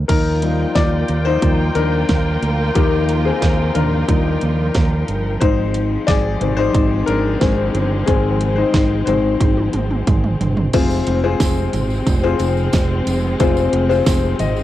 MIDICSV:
0, 0, Header, 1, 5, 480
1, 0, Start_track
1, 0, Tempo, 665188
1, 68, Time_signature, 4, 2, 24, 8
1, 10559, End_track
2, 0, Start_track
2, 0, Title_t, "Upright piano"
2, 0, Program_c, 0, 0
2, 0, Control_c, 0, 64, 127
2, 58, Note_on_c, 0, 70, 80
2, 71, Note_on_c, 0, 63, 63
2, 77, Control_c, 0, 64, 0
2, 219, Control_c, 0, 64, 127
2, 298, Note_off_c, 0, 63, 0
2, 301, Note_on_c, 0, 53, 51
2, 305, Note_on_c, 0, 55, 42
2, 309, Note_on_c, 0, 63, 50
2, 541, Note_on_c, 0, 74, 89
2, 552, Note_on_c, 0, 65, 68
2, 558, Note_off_c, 0, 70, 0
2, 624, Note_off_c, 0, 53, 0
2, 626, Note_off_c, 0, 55, 0
2, 628, Note_off_c, 0, 63, 0
2, 885, Note_off_c, 0, 65, 0
2, 901, Note_on_c, 0, 72, 97
2, 913, Note_on_c, 0, 63, 68
2, 916, Note_off_c, 0, 74, 0
2, 1018, Note_off_c, 0, 63, 0
2, 1024, Note_on_c, 0, 53, 43
2, 1027, Note_on_c, 0, 55, 36
2, 1029, Note_on_c, 0, 63, 47
2, 1242, Note_off_c, 0, 53, 0
2, 1244, Note_off_c, 0, 55, 0
2, 1245, Note_off_c, 0, 63, 0
2, 1264, Note_on_c, 0, 70, 86
2, 1273, Note_on_c, 0, 62, 64
2, 1276, Note_off_c, 0, 72, 0
2, 1958, Note_off_c, 0, 70, 0
2, 1962, Note_off_c, 0, 62, 0
2, 1981, Note_on_c, 0, 53, 49
2, 1981, Note_on_c, 0, 67, 71
2, 1985, Note_on_c, 0, 51, 43
2, 1990, Note_on_c, 0, 63, 51
2, 1992, Note_on_c, 0, 58, 59
2, 2325, Note_off_c, 0, 58, 0
2, 2344, Note_on_c, 0, 68, 73
2, 2352, Note_on_c, 0, 60, 58
2, 2356, Note_off_c, 0, 67, 0
2, 2676, Note_off_c, 0, 53, 0
2, 2678, Note_off_c, 0, 51, 0
2, 2681, Note_off_c, 0, 63, 0
2, 2681, Note_off_c, 0, 68, 0
2, 2686, Note_off_c, 0, 60, 0
2, 2703, Note_on_c, 0, 70, 68
2, 2714, Note_on_c, 0, 62, 53
2, 2946, Note_on_c, 0, 53, 42
2, 2948, Note_on_c, 0, 55, 40
2, 2950, Note_on_c, 0, 63, 50
2, 3163, Note_off_c, 0, 53, 0
2, 3165, Note_off_c, 0, 55, 0
2, 3166, Note_off_c, 0, 63, 0
2, 3637, Note_off_c, 0, 70, 0
2, 3642, Note_off_c, 0, 62, 0
2, 3900, Note_on_c, 0, 72, 93
2, 3914, Note_on_c, 0, 63, 68
2, 3919, Control_c, 0, 64, 0
2, 4042, Control_c, 0, 64, 127
2, 4363, Note_off_c, 0, 63, 0
2, 4379, Note_on_c, 0, 74, 96
2, 4393, Note_on_c, 0, 68, 75
2, 4399, Note_off_c, 0, 72, 0
2, 4623, Note_on_c, 0, 51, 50
2, 4627, Note_on_c, 0, 56, 45
2, 4632, Note_on_c, 0, 60, 54
2, 4725, Note_off_c, 0, 68, 0
2, 4739, Note_on_c, 0, 72, 104
2, 4752, Note_on_c, 0, 63, 72
2, 4754, Note_off_c, 0, 74, 0
2, 5085, Note_off_c, 0, 63, 0
2, 5096, Note_on_c, 0, 70, 92
2, 5111, Note_on_c, 0, 62, 70
2, 5114, Note_off_c, 0, 72, 0
2, 5316, Note_off_c, 0, 51, 0
2, 5319, Note_off_c, 0, 56, 0
2, 5321, Note_off_c, 0, 60, 0
2, 5344, Note_on_c, 0, 51, 43
2, 5346, Note_on_c, 0, 56, 35
2, 5349, Note_on_c, 0, 60, 49
2, 5562, Note_off_c, 0, 51, 0
2, 5563, Note_off_c, 0, 56, 0
2, 5565, Note_off_c, 0, 60, 0
2, 5801, Note_off_c, 0, 62, 0
2, 5815, Note_on_c, 0, 68, 81
2, 5820, Note_on_c, 0, 51, 48
2, 5825, Note_on_c, 0, 56, 45
2, 5830, Note_on_c, 0, 60, 67
2, 5844, Note_off_c, 0, 70, 0
2, 6174, Note_on_c, 0, 72, 85
2, 6191, Note_on_c, 0, 63, 70
2, 6192, Note_off_c, 0, 68, 0
2, 6515, Note_off_c, 0, 51, 0
2, 6518, Note_off_c, 0, 56, 0
2, 6520, Note_off_c, 0, 60, 0
2, 6524, Note_off_c, 0, 63, 0
2, 6524, Note_off_c, 0, 72, 0
2, 6535, Note_on_c, 0, 72, 80
2, 6541, Note_on_c, 0, 51, 44
2, 6545, Note_on_c, 0, 56, 44
2, 6547, Note_on_c, 0, 60, 47
2, 6550, Note_on_c, 0, 63, 59
2, 6760, Note_off_c, 0, 51, 0
2, 6762, Note_off_c, 0, 56, 0
2, 6764, Note_off_c, 0, 60, 0
2, 7473, Note_off_c, 0, 72, 0
2, 7481, Note_off_c, 0, 63, 0
2, 7746, Note_on_c, 0, 65, 67
2, 7747, Note_on_c, 0, 60, 84
2, 7747, Note_on_c, 0, 68, 69
2, 7748, Note_on_c, 0, 48, 64
2, 7748, Note_on_c, 0, 72, 88
2, 7758, Control_c, 0, 64, 0
2, 7890, Control_c, 0, 64, 127
2, 8072, Note_off_c, 0, 60, 0
2, 8072, Note_off_c, 0, 65, 0
2, 8072, Note_off_c, 0, 68, 0
2, 8072, Note_off_c, 0, 72, 0
2, 8108, Note_on_c, 0, 65, 67
2, 8109, Note_on_c, 0, 60, 80
2, 8110, Note_on_c, 0, 68, 75
2, 8110, Note_on_c, 0, 72, 89
2, 8440, Note_off_c, 0, 48, 0
2, 8757, Note_off_c, 0, 60, 0
2, 8757, Note_off_c, 0, 65, 0
2, 8758, Note_off_c, 0, 68, 0
2, 8758, Note_off_c, 0, 72, 0
2, 8829, Note_on_c, 0, 60, 77
2, 8829, Note_on_c, 0, 65, 76
2, 8829, Note_on_c, 0, 68, 73
2, 8830, Note_on_c, 0, 72, 90
2, 9586, Note_off_c, 0, 60, 0
2, 9586, Note_off_c, 0, 65, 0
2, 9586, Note_off_c, 0, 68, 0
2, 9586, Note_off_c, 0, 72, 0
2, 9668, Note_on_c, 0, 60, 76
2, 9668, Note_on_c, 0, 68, 74
2, 9669, Note_on_c, 0, 48, 69
2, 9669, Note_on_c, 0, 65, 75
2, 9670, Note_on_c, 0, 72, 84
2, 9993, Note_off_c, 0, 68, 0
2, 9994, Note_off_c, 0, 60, 0
2, 9994, Note_off_c, 0, 65, 0
2, 9994, Note_off_c, 0, 72, 0
2, 10025, Note_on_c, 0, 60, 78
2, 10025, Note_on_c, 0, 65, 75
2, 10026, Note_on_c, 0, 68, 75
2, 10026, Note_on_c, 0, 72, 92
2, 10362, Note_off_c, 0, 48, 0
2, 10389, Note_on_c, 0, 75, 67
2, 10559, Note_off_c, 0, 60, 0
2, 10559, Note_off_c, 0, 65, 0
2, 10559, Note_off_c, 0, 68, 0
2, 10559, Note_off_c, 0, 72, 0
2, 10559, Note_off_c, 0, 75, 0
2, 10559, End_track
3, 0, Start_track
3, 0, Title_t, "String section"
3, 0, Program_c, 1, 48
3, 71, Note_on_c, 1, 53, 66
3, 71, Note_on_c, 1, 58, 58
3, 71, Note_on_c, 1, 65, 58
3, 72, Note_on_c, 1, 79, 59
3, 73, Note_on_c, 1, 70, 72
3, 3882, Note_off_c, 1, 58, 0
3, 3882, Note_off_c, 1, 65, 0
3, 3882, Note_off_c, 1, 70, 0
3, 3882, Note_off_c, 1, 79, 0
3, 3910, Note_on_c, 1, 60, 75
3, 3914, Note_on_c, 1, 56, 67
3, 7720, Note_off_c, 1, 60, 0
3, 7721, Note_off_c, 1, 53, 0
3, 7722, Note_off_c, 1, 56, 0
3, 7752, Note_on_c, 1, 56, 67
3, 7753, Note_on_c, 1, 60, 82
3, 7754, Note_on_c, 1, 48, 76
3, 10559, Note_off_c, 1, 48, 0
3, 10559, Note_off_c, 1, 56, 0
3, 10559, Note_off_c, 1, 60, 0
3, 10559, End_track
4, 0, Start_track
4, 0, Title_t, "Fingered electric bass"
4, 0, Program_c, 2, 33
4, 67, Note_on_c, 2, 39, 88
4, 461, Note_off_c, 2, 39, 0
4, 545, Note_on_c, 2, 39, 77
4, 743, Note_off_c, 2, 39, 0
4, 788, Note_on_c, 2, 39, 82
4, 985, Note_off_c, 2, 39, 0
4, 1025, Note_on_c, 2, 39, 80
4, 1224, Note_off_c, 2, 39, 0
4, 1266, Note_on_c, 2, 39, 80
4, 1464, Note_off_c, 2, 39, 0
4, 1508, Note_on_c, 2, 39, 92
4, 1705, Note_off_c, 2, 39, 0
4, 1748, Note_on_c, 2, 38, 77
4, 1945, Note_off_c, 2, 38, 0
4, 1989, Note_on_c, 2, 39, 93
4, 2383, Note_off_c, 2, 39, 0
4, 2468, Note_on_c, 2, 39, 91
4, 2665, Note_off_c, 2, 39, 0
4, 2710, Note_on_c, 2, 39, 87
4, 2906, Note_off_c, 2, 39, 0
4, 2948, Note_on_c, 2, 39, 90
4, 3145, Note_off_c, 2, 39, 0
4, 3193, Note_on_c, 2, 39, 77
4, 3388, Note_off_c, 2, 39, 0
4, 3429, Note_on_c, 2, 39, 81
4, 3626, Note_off_c, 2, 39, 0
4, 3668, Note_on_c, 2, 31, 79
4, 3865, Note_off_c, 2, 31, 0
4, 3908, Note_on_c, 2, 32, 98
4, 4302, Note_off_c, 2, 32, 0
4, 4387, Note_on_c, 2, 32, 88
4, 4584, Note_off_c, 2, 32, 0
4, 4627, Note_on_c, 2, 32, 86
4, 4824, Note_off_c, 2, 32, 0
4, 4866, Note_on_c, 2, 32, 92
4, 5064, Note_off_c, 2, 32, 0
4, 5110, Note_on_c, 2, 32, 79
4, 5306, Note_off_c, 2, 32, 0
4, 5349, Note_on_c, 2, 32, 85
4, 5545, Note_off_c, 2, 32, 0
4, 5589, Note_on_c, 2, 31, 91
4, 5786, Note_off_c, 2, 31, 0
4, 5829, Note_on_c, 2, 32, 96
4, 6222, Note_off_c, 2, 32, 0
4, 6305, Note_on_c, 2, 32, 86
4, 6503, Note_off_c, 2, 32, 0
4, 6547, Note_on_c, 2, 32, 88
4, 6744, Note_off_c, 2, 32, 0
4, 6785, Note_on_c, 2, 32, 94
4, 6983, Note_off_c, 2, 32, 0
4, 7027, Note_on_c, 2, 32, 88
4, 7224, Note_off_c, 2, 32, 0
4, 7267, Note_on_c, 2, 32, 100
4, 7464, Note_off_c, 2, 32, 0
4, 7508, Note_on_c, 2, 31, 85
4, 7705, Note_off_c, 2, 31, 0
4, 7748, Note_on_c, 2, 29, 94
4, 7945, Note_off_c, 2, 29, 0
4, 7990, Note_on_c, 2, 29, 89
4, 8186, Note_off_c, 2, 29, 0
4, 8226, Note_on_c, 2, 29, 82
4, 8424, Note_off_c, 2, 29, 0
4, 8469, Note_on_c, 2, 32, 73
4, 8666, Note_off_c, 2, 32, 0
4, 8707, Note_on_c, 2, 29, 95
4, 8905, Note_off_c, 2, 29, 0
4, 8946, Note_on_c, 2, 29, 89
4, 9144, Note_off_c, 2, 29, 0
4, 9190, Note_on_c, 2, 29, 93
4, 9387, Note_off_c, 2, 29, 0
4, 9427, Note_on_c, 2, 29, 86
4, 9625, Note_off_c, 2, 29, 0
4, 9670, Note_on_c, 2, 29, 98
4, 9867, Note_off_c, 2, 29, 0
4, 9907, Note_on_c, 2, 29, 96
4, 10106, Note_off_c, 2, 29, 0
4, 10149, Note_on_c, 2, 29, 89
4, 10347, Note_off_c, 2, 29, 0
4, 10391, Note_on_c, 2, 32, 85
4, 10559, Note_off_c, 2, 32, 0
4, 10559, End_track
5, 0, Start_track
5, 0, Title_t, "Drums"
5, 64, Note_on_c, 9, 42, 86
5, 65, Note_on_c, 9, 49, 77
5, 66, Note_on_c, 9, 36, 92
5, 137, Note_off_c, 9, 42, 0
5, 137, Note_off_c, 9, 49, 0
5, 138, Note_off_c, 9, 36, 0
5, 304, Note_on_c, 9, 42, 62
5, 377, Note_off_c, 9, 42, 0
5, 545, Note_on_c, 9, 36, 95
5, 545, Note_on_c, 9, 38, 90
5, 545, Note_on_c, 9, 42, 78
5, 617, Note_off_c, 9, 36, 0
5, 617, Note_off_c, 9, 38, 0
5, 617, Note_off_c, 9, 42, 0
5, 782, Note_on_c, 9, 42, 61
5, 854, Note_off_c, 9, 42, 0
5, 1026, Note_on_c, 9, 36, 93
5, 1026, Note_on_c, 9, 42, 77
5, 1098, Note_off_c, 9, 36, 0
5, 1098, Note_off_c, 9, 42, 0
5, 1263, Note_on_c, 9, 42, 54
5, 1335, Note_off_c, 9, 42, 0
5, 1505, Note_on_c, 9, 42, 66
5, 1508, Note_on_c, 9, 38, 78
5, 1509, Note_on_c, 9, 36, 87
5, 1577, Note_off_c, 9, 42, 0
5, 1580, Note_off_c, 9, 38, 0
5, 1581, Note_off_c, 9, 36, 0
5, 1749, Note_on_c, 9, 42, 60
5, 1822, Note_off_c, 9, 42, 0
5, 1986, Note_on_c, 9, 42, 88
5, 1989, Note_on_c, 9, 36, 105
5, 2059, Note_off_c, 9, 42, 0
5, 2061, Note_off_c, 9, 36, 0
5, 2227, Note_on_c, 9, 42, 68
5, 2299, Note_off_c, 9, 42, 0
5, 2468, Note_on_c, 9, 36, 93
5, 2469, Note_on_c, 9, 38, 87
5, 2469, Note_on_c, 9, 42, 80
5, 2540, Note_off_c, 9, 36, 0
5, 2541, Note_off_c, 9, 38, 0
5, 2541, Note_off_c, 9, 42, 0
5, 2706, Note_on_c, 9, 42, 64
5, 2707, Note_on_c, 9, 43, 59
5, 2778, Note_off_c, 9, 42, 0
5, 2779, Note_off_c, 9, 43, 0
5, 2947, Note_on_c, 9, 36, 96
5, 2948, Note_on_c, 9, 42, 86
5, 3020, Note_off_c, 9, 36, 0
5, 3020, Note_off_c, 9, 42, 0
5, 3185, Note_on_c, 9, 42, 61
5, 3257, Note_off_c, 9, 42, 0
5, 3424, Note_on_c, 9, 42, 67
5, 3427, Note_on_c, 9, 38, 80
5, 3429, Note_on_c, 9, 36, 94
5, 3497, Note_off_c, 9, 42, 0
5, 3499, Note_off_c, 9, 38, 0
5, 3501, Note_off_c, 9, 36, 0
5, 3667, Note_on_c, 9, 42, 63
5, 3740, Note_off_c, 9, 42, 0
5, 3906, Note_on_c, 9, 42, 83
5, 3908, Note_on_c, 9, 36, 97
5, 3978, Note_off_c, 9, 42, 0
5, 3980, Note_off_c, 9, 36, 0
5, 4144, Note_on_c, 9, 42, 68
5, 4216, Note_off_c, 9, 42, 0
5, 4387, Note_on_c, 9, 36, 97
5, 4387, Note_on_c, 9, 42, 87
5, 4388, Note_on_c, 9, 38, 93
5, 4459, Note_off_c, 9, 36, 0
5, 4459, Note_off_c, 9, 42, 0
5, 4460, Note_off_c, 9, 38, 0
5, 4626, Note_on_c, 9, 42, 59
5, 4627, Note_on_c, 9, 43, 57
5, 4698, Note_off_c, 9, 42, 0
5, 4699, Note_off_c, 9, 43, 0
5, 4867, Note_on_c, 9, 36, 96
5, 4868, Note_on_c, 9, 42, 85
5, 4939, Note_off_c, 9, 36, 0
5, 4941, Note_off_c, 9, 42, 0
5, 5106, Note_on_c, 9, 42, 63
5, 5178, Note_off_c, 9, 42, 0
5, 5348, Note_on_c, 9, 42, 70
5, 5349, Note_on_c, 9, 36, 95
5, 5351, Note_on_c, 9, 38, 84
5, 5420, Note_off_c, 9, 42, 0
5, 5421, Note_off_c, 9, 36, 0
5, 5423, Note_off_c, 9, 38, 0
5, 5590, Note_on_c, 9, 42, 59
5, 5662, Note_off_c, 9, 42, 0
5, 5827, Note_on_c, 9, 42, 95
5, 5828, Note_on_c, 9, 36, 100
5, 5899, Note_off_c, 9, 42, 0
5, 5900, Note_off_c, 9, 36, 0
5, 6066, Note_on_c, 9, 42, 68
5, 6138, Note_off_c, 9, 42, 0
5, 6305, Note_on_c, 9, 36, 105
5, 6306, Note_on_c, 9, 38, 97
5, 6306, Note_on_c, 9, 42, 82
5, 6378, Note_off_c, 9, 36, 0
5, 6378, Note_off_c, 9, 42, 0
5, 6379, Note_off_c, 9, 38, 0
5, 6545, Note_on_c, 9, 42, 69
5, 6545, Note_on_c, 9, 43, 61
5, 6617, Note_off_c, 9, 42, 0
5, 6618, Note_off_c, 9, 43, 0
5, 6785, Note_on_c, 9, 36, 102
5, 6786, Note_on_c, 9, 48, 50
5, 6787, Note_on_c, 9, 42, 87
5, 6858, Note_off_c, 9, 36, 0
5, 6858, Note_off_c, 9, 48, 0
5, 6859, Note_off_c, 9, 42, 0
5, 6905, Note_on_c, 9, 48, 46
5, 6978, Note_off_c, 9, 48, 0
5, 7021, Note_on_c, 9, 42, 63
5, 7024, Note_on_c, 9, 47, 59
5, 7094, Note_off_c, 9, 42, 0
5, 7096, Note_off_c, 9, 47, 0
5, 7147, Note_on_c, 9, 47, 58
5, 7220, Note_off_c, 9, 47, 0
5, 7267, Note_on_c, 9, 42, 75
5, 7268, Note_on_c, 9, 36, 95
5, 7268, Note_on_c, 9, 45, 72
5, 7339, Note_off_c, 9, 42, 0
5, 7340, Note_off_c, 9, 36, 0
5, 7340, Note_off_c, 9, 45, 0
5, 7387, Note_on_c, 9, 45, 67
5, 7459, Note_off_c, 9, 45, 0
5, 7508, Note_on_c, 9, 43, 83
5, 7510, Note_on_c, 9, 42, 61
5, 7581, Note_off_c, 9, 43, 0
5, 7582, Note_off_c, 9, 42, 0
5, 7626, Note_on_c, 9, 43, 85
5, 7698, Note_off_c, 9, 43, 0
5, 7745, Note_on_c, 9, 42, 91
5, 7746, Note_on_c, 9, 49, 85
5, 7746, Note_on_c, 9, 54, 43
5, 7747, Note_on_c, 9, 36, 104
5, 7818, Note_off_c, 9, 42, 0
5, 7818, Note_off_c, 9, 49, 0
5, 7819, Note_off_c, 9, 54, 0
5, 7820, Note_off_c, 9, 36, 0
5, 7870, Note_on_c, 9, 54, 44
5, 7942, Note_off_c, 9, 54, 0
5, 7986, Note_on_c, 9, 42, 74
5, 8058, Note_off_c, 9, 42, 0
5, 8226, Note_on_c, 9, 36, 114
5, 8228, Note_on_c, 9, 38, 99
5, 8228, Note_on_c, 9, 42, 85
5, 8229, Note_on_c, 9, 54, 79
5, 8298, Note_off_c, 9, 36, 0
5, 8300, Note_off_c, 9, 38, 0
5, 8300, Note_off_c, 9, 42, 0
5, 8301, Note_off_c, 9, 54, 0
5, 8466, Note_on_c, 9, 42, 69
5, 8467, Note_on_c, 9, 43, 59
5, 8472, Note_on_c, 9, 54, 53
5, 8539, Note_off_c, 9, 42, 0
5, 8539, Note_off_c, 9, 43, 0
5, 8544, Note_off_c, 9, 54, 0
5, 8589, Note_on_c, 9, 54, 30
5, 8661, Note_off_c, 9, 54, 0
5, 8707, Note_on_c, 9, 36, 97
5, 8709, Note_on_c, 9, 42, 89
5, 8712, Note_on_c, 9, 54, 48
5, 8779, Note_off_c, 9, 36, 0
5, 8781, Note_off_c, 9, 42, 0
5, 8784, Note_off_c, 9, 54, 0
5, 8942, Note_on_c, 9, 54, 46
5, 8946, Note_on_c, 9, 42, 62
5, 9014, Note_off_c, 9, 54, 0
5, 9019, Note_off_c, 9, 42, 0
5, 9071, Note_on_c, 9, 54, 30
5, 9144, Note_off_c, 9, 54, 0
5, 9184, Note_on_c, 9, 54, 73
5, 9187, Note_on_c, 9, 42, 76
5, 9190, Note_on_c, 9, 36, 97
5, 9190, Note_on_c, 9, 38, 86
5, 9256, Note_off_c, 9, 54, 0
5, 9259, Note_off_c, 9, 42, 0
5, 9262, Note_off_c, 9, 36, 0
5, 9262, Note_off_c, 9, 38, 0
5, 9430, Note_on_c, 9, 54, 52
5, 9431, Note_on_c, 9, 42, 69
5, 9502, Note_off_c, 9, 54, 0
5, 9503, Note_off_c, 9, 42, 0
5, 9666, Note_on_c, 9, 54, 45
5, 9669, Note_on_c, 9, 42, 94
5, 9670, Note_on_c, 9, 36, 103
5, 9738, Note_off_c, 9, 54, 0
5, 9741, Note_off_c, 9, 42, 0
5, 9742, Note_off_c, 9, 36, 0
5, 9790, Note_on_c, 9, 54, 49
5, 9862, Note_off_c, 9, 54, 0
5, 9907, Note_on_c, 9, 42, 76
5, 9979, Note_off_c, 9, 42, 0
5, 10036, Note_on_c, 9, 54, 29
5, 10108, Note_off_c, 9, 54, 0
5, 10148, Note_on_c, 9, 54, 81
5, 10149, Note_on_c, 9, 36, 113
5, 10150, Note_on_c, 9, 42, 90
5, 10151, Note_on_c, 9, 38, 106
5, 10221, Note_off_c, 9, 36, 0
5, 10221, Note_off_c, 9, 54, 0
5, 10222, Note_off_c, 9, 42, 0
5, 10223, Note_off_c, 9, 38, 0
5, 10386, Note_on_c, 9, 42, 68
5, 10387, Note_on_c, 9, 43, 59
5, 10392, Note_on_c, 9, 54, 53
5, 10458, Note_off_c, 9, 42, 0
5, 10459, Note_off_c, 9, 43, 0
5, 10464, Note_off_c, 9, 54, 0
5, 10511, Note_on_c, 9, 54, 30
5, 10559, Note_off_c, 9, 54, 0
5, 10559, End_track
0, 0, End_of_file